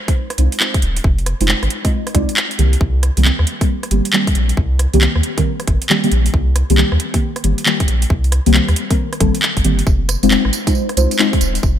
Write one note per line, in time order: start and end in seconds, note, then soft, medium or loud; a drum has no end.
0.08 0.24 G#3 medium
0.08 0.24 C4 medium
0.08 0.24 D#4 medium
0.08 0.24 F4 medium
0.08 0.24 C5 medium
0.08 kick loud
0.08 closed hi-hat medium
0.30 cross-stick medium
0.30 closed hi-hat soft
0.38 0.48 C2 medium
0.38 0.57 G#3 medium
0.38 0.57 C4 medium
0.38 0.57 D#4 medium
0.38 0.57 F4 medium
0.38 0.57 C5 medium
0.38 closed hi-hat loud
0.52 closed hi-hat medium
0.60 0.79 G#3 medium
0.60 0.79 C4 medium
0.60 0.79 D#4 medium
0.60 0.79 F4 medium
0.60 0.79 C5 loud
0.60 clap loud
0.74 kick loud
0.74 closed hi-hat soft
0.82 1.00 D#1 medium
0.82 closed hi-hat medium
0.96 closed hi-hat medium
1.04 1.34 F1 loud
1.04 kick loud
1.19 closed hi-hat soft
1.26 cross-stick soft
1.26 closed hi-hat loud
1.40 1.54 F1 loud
1.40 1.47 G#3 medium
1.40 1.47 C4 medium
1.40 1.47 D#4 medium
1.40 1.47 F4 medium
1.40 1.47 C5 loud
1.40 closed hi-hat medium
1.48 1.62 G#3 medium
1.48 1.62 C4 medium
1.48 1.62 D#4 medium
1.48 1.62 F4 medium
1.48 1.62 C5 medium
1.48 clap loud
1.63 1.68 G#1 medium
1.63 cross-stick soft
1.63 closed hi-hat soft
1.70 closed hi-hat medium
1.85 2.01 G#3 medium
1.85 2.01 C4 medium
1.85 2.01 D#4 medium
1.85 2.01 F4 medium
1.85 2.01 D#5 medium
1.85 kick loud
1.85 closed hi-hat medium
2.07 cross-stick medium
2.07 closed hi-hat soft
2.15 2.25 C2 medium
2.15 2.29 G#3 medium
2.15 2.29 C4 medium
2.15 2.29 D#4 medium
2.15 2.29 F4 medium
2.15 2.29 D5 loud
2.15 kick loud
2.15 closed hi-hat medium
2.29 closed hi-hat medium
2.37 clap loud
2.51 closed hi-hat soft
2.59 2.76 C2 medium
2.59 2.73 D#3 medium
2.59 2.73 G3 medium
2.59 2.73 A#3 medium
2.59 2.73 C4 medium
2.59 2.73 G4 medium
2.59 closed hi-hat medium
2.73 closed hi-hat medium
2.81 3.10 C2 loud
2.81 kick loud
3.03 cross-stick soft
3.03 closed hi-hat loud
3.17 3.31 C2 loud
3.17 3.24 D#3 medium
3.17 3.24 G3 medium
3.17 3.24 A#3 medium
3.17 3.24 C4 medium
3.17 3.24 G4 medium
3.17 closed hi-hat medium
3.25 3.39 D#3 medium
3.25 3.39 G3 medium
3.25 3.39 A#3 medium
3.25 3.39 C4 medium
3.25 3.39 G4 medium
3.25 clap loud
3.39 3.45 D#2 medium
3.39 cross-stick soft
3.47 closed hi-hat medium
3.61 3.77 D#3 medium
3.61 3.77 G3 medium
3.61 3.77 A#3 medium
3.61 3.77 C4 medium
3.61 3.77 G4 medium
3.61 kick loud
3.61 closed hi-hat medium
3.83 cross-stick soft
3.83 closed hi-hat medium
3.91 4.01 G1 medium
3.91 4.10 D#3 medium
3.91 4.10 G3 medium
3.91 4.10 A#3 medium
3.91 4.10 C4 medium
3.91 4.10 G4 medium
3.91 closed hi-hat medium
4.05 closed hi-hat medium
4.13 4.32 D#3 medium
4.13 4.32 G3 medium
4.13 4.32 A#3 medium
4.13 4.32 C4 medium
4.13 4.32 G4 loud
4.13 clap loud
4.27 kick loud
4.27 closed hi-hat soft
4.35 4.53 A#1 medium
4.35 closed hi-hat medium
4.49 closed hi-hat medium
4.57 4.87 C2 medium
4.57 kick loud
4.79 cross-stick soft
4.79 closed hi-hat loud
4.93 5.07 C2 loud
4.93 5.00 D#3 medium
4.93 5.00 G3 medium
4.93 5.00 A#3 medium
4.93 5.00 C4 medium
4.93 5.00 G4 medium
4.93 closed hi-hat medium
5.01 5.15 D#3 medium
5.01 5.15 G3 medium
5.01 5.15 C4 medium
5.01 clap loud
5.16 5.21 D#2 medium
5.16 cross-stick soft
5.23 closed hi-hat medium
5.38 5.54 D#3 medium
5.38 5.54 G3 medium
5.38 5.54 A#3 medium
5.38 5.54 C4 medium
5.38 5.54 A#4 loud
5.38 kick loud
5.38 closed hi-hat medium
5.60 cross-stick soft
5.60 closed hi-hat soft
5.67 5.78 G1 medium
5.67 kick loud
5.67 closed hi-hat loud
5.82 closed hi-hat medium
5.90 6.02 D#3 medium
5.90 6.02 G3 medium
5.90 6.02 A#3 medium
5.90 6.02 C4 medium
5.90 6.02 G4 medium
5.90 clap loud
6.04 6.12 D#3 medium
6.04 6.12 G3 medium
6.04 6.12 A#3 medium
6.04 6.12 C4 medium
6.04 6.12 G4 loud
6.04 closed hi-hat medium
6.12 6.29 A#1 medium
6.12 closed hi-hat medium
6.26 closed hi-hat medium
6.34 6.63 C2 loud
6.34 kick loud
6.56 cross-stick soft
6.56 closed hi-hat loud
6.70 6.84 C2 loud
6.70 6.77 D#3 medium
6.70 6.77 G3 medium
6.70 6.77 A#3 medium
6.70 6.77 C4 medium
6.70 6.77 G4 medium
6.70 closed hi-hat medium
6.78 6.92 D#3 medium
6.78 6.92 G3 medium
6.78 6.92 A#3 medium
6.78 6.92 C4 medium
6.78 6.92 G4 medium
6.78 clap loud
6.92 6.98 D#2 medium
6.92 cross-stick soft
7.00 closed hi-hat loud
7.14 7.30 D#3 medium
7.14 7.30 G3 medium
7.14 7.30 A#3 medium
7.14 7.30 C4 medium
7.14 7.30 G4 medium
7.14 kick loud
7.14 closed hi-hat medium
7.36 cross-stick medium
7.36 closed hi-hat medium
7.44 7.54 G1 medium
7.44 7.63 D#3 medium
7.44 7.63 G3 medium
7.44 7.63 A#3 medium
7.44 7.63 C4 medium
7.44 7.63 G4 medium
7.44 closed hi-hat loud
7.58 closed hi-hat medium
7.66 7.85 D#3 medium
7.66 7.85 G3 medium
7.66 7.85 A#3 medium
7.66 7.85 C4 medium
7.66 7.85 G4 loud
7.66 clap loud
7.80 kick loud
7.80 closed hi-hat medium
7.88 8.06 A#1 medium
7.88 closed hi-hat medium
8.02 closed hi-hat medium
8.10 8.40 C2 medium
8.10 kick loud
8.24 closed hi-hat soft
8.32 cross-stick medium
8.32 closed hi-hat loud
8.46 8.60 C2 medium
8.46 8.52 D#3 medium
8.46 8.52 G3 medium
8.46 8.52 A#3 medium
8.46 8.52 C4 medium
8.46 8.52 G4 medium
8.46 closed hi-hat medium
8.54 8.68 D#3 medium
8.54 8.68 G3 medium
8.54 8.68 A#3 medium
8.54 8.68 C4 medium
8.54 8.68 G4 medium
8.54 clap loud
8.68 8.74 D#2 medium
8.68 cross-stick medium
8.68 closed hi-hat soft
8.76 closed hi-hat loud
8.90 9.07 D#3 medium
8.90 9.07 G3 medium
8.90 9.07 A#3 medium
8.90 9.07 C4 medium
8.90 9.07 A#4 medium
8.90 kick loud
8.90 closed hi-hat medium
9.13 cross-stick medium
9.13 closed hi-hat medium
9.20 9.31 G1 medium
9.20 9.34 D#3 loud
9.20 9.34 G3 medium
9.20 9.34 A#3 medium
9.20 9.34 C4 medium
9.20 9.34 A4 loud
9.20 kick loud
9.20 closed hi-hat loud
9.35 closed hi-hat medium
9.42 clap loud
9.57 9.62 G1 medium
9.57 kick medium
9.57 closed hi-hat medium
9.64 9.82 G1 loud
9.64 9.79 D#3 medium
9.64 9.79 G3 medium
9.64 9.79 A#3 medium
9.64 9.79 C4 medium
9.64 9.79 G4 medium
9.64 closed hi-hat medium
9.79 closed hi-hat medium
9.87 10.16 F1 loud
9.87 kick loud
9.87 tambourine soft
10.09 cross-stick medium
10.09 closed hi-hat loud
10.09 tambourine medium
10.23 10.37 F1 loud
10.23 10.30 G#3 medium
10.23 10.30 C4 medium
10.23 10.30 D#4 medium
10.23 10.30 F4 medium
10.23 10.30 C5 medium
10.23 closed hi-hat medium
10.23 tambourine soft
10.31 10.45 G#3 medium
10.31 10.45 C4 medium
10.31 10.45 D#4 medium
10.31 10.45 F4 medium
10.31 10.45 C5 medium
10.31 clap loud
10.31 tambourine soft
10.45 10.51 G#1 medium
10.45 cross-stick medium
10.53 closed hi-hat loud
10.53 tambourine medium
10.67 10.83 G#3 medium
10.67 10.83 C4 medium
10.67 10.83 D#4 medium
10.67 10.83 F4 medium
10.67 10.83 C5 medium
10.67 kick loud
10.67 closed hi-hat medium
10.67 tambourine soft
10.75 tambourine soft
10.89 cross-stick medium
10.89 closed hi-hat soft
10.97 11.07 C2 medium
10.97 11.16 G#3 medium
10.97 11.16 C4 medium
10.97 11.16 D#4 medium
10.97 11.16 F4 medium
10.97 11.16 C5 medium
10.97 closed hi-hat loud
10.97 tambourine medium
11.11 closed hi-hat medium
11.11 tambourine soft
11.19 11.38 G#3 medium
11.19 11.38 C4 medium
11.19 11.38 D#4 medium
11.19 11.38 F4 medium
11.19 11.38 C5 loud
11.19 clap loud
11.19 tambourine soft
11.33 kick loud
11.33 closed hi-hat soft
11.41 11.59 D#1 medium
11.41 closed hi-hat medium
11.41 tambourine medium
11.55 closed hi-hat medium
11.55 tambourine soft
11.63 11.79 F1 loud
11.63 kick loud
11.63 tambourine soft